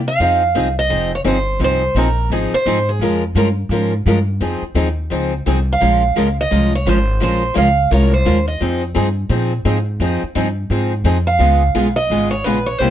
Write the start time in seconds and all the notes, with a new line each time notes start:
Already playing: C3
0.08 F5
0.20 F2 F3 C4 D#4 G#4
0.55 C2 F3 C4 D#4 G#4
0.79 D#5
0.89 F1 F3 C4 D#4 G#4
1.15 C#5
1.24 G1 F3 C4 D#4 G#4 C5
1.59 C2 F3 C4 D#4 G#4
1.64 C5
1.95 A#1 F3 C4 D#4 G#4 A#4
2.30 G#1 F3 C4 D#4 G#4
2.53 C5, muted upright bass stroke
2.66 G#2 F3 C4 D#4 G#4
2.89 G#4
3.00 F2 F3 G#3 C#4 F4 A#4
3.35 G2 F3 G#3 C#4 F4 A#4
3.69 G#2 F3 G#3 C#4 F4 A#4
4.06 G2 F3 G#3 C#4 F4 A#4
4.41 F2 F3 C4 D#4 G#4
4.62 muted upright bass stroke
4.75 D#2 F3 C4 D#4 G#4
5.10 C#2 F3 C4 D#4 G#4
5.46 C2 F3 C4 D#4 G#4
5.73 F5
5.81 A#1 F3 G#3 C#4 F4 A#4
6.16 C#2 F3 G#3 C#4 F4 A#4
6.41 D#5
6.51 C2 F3 G#3 C#4 F4 A#4
6.75 C#5
6.86 G#1 F3 G#3 C#4 F4 A#4 C5
7.20 A#1 F3 G#3 C#4 F4 A#4 C5
7.54 C#2 F3 G#3 C#4 F4 A#4 F5
7.91 C2 F3 G#3 C#4 F4 A#4 C#5
8.14 C5
8.25 D#2 F3 G#3 C#4 F4 A#4
8.48 D#5
8.61 F2 F3 C4 D#4 G#4
8.95 G2 F3 C4 D#4 G#4
9.29 A#2 F3 C4 D#4 G#4
9.65 G#2 F3 C4 D#4 G#4
10.00 F2 F3 C4 D#4 G#4
10.23 muted upright bass stroke
10.35 G2 F3 C4 D#4 G#4
10.70 G#2 F3 C4 D#4 G#4
11.04 F2 F3 C4 D#4 G#4
11.27 F5
11.39 C#2 C#3 G#3 B3 F4 G#4
11.75 B1 C#3 G#3 B3 F4 G#4
11.96 D#5
12.10 G#1 C#3 G#3 B3 F4 G#4
12.31 C#5
12.44 A#1 C#3 G#3 B3 F4 G#4 B4
12.66 C#5
12.78 C2 C3 G3 A#3 E4 G4 C5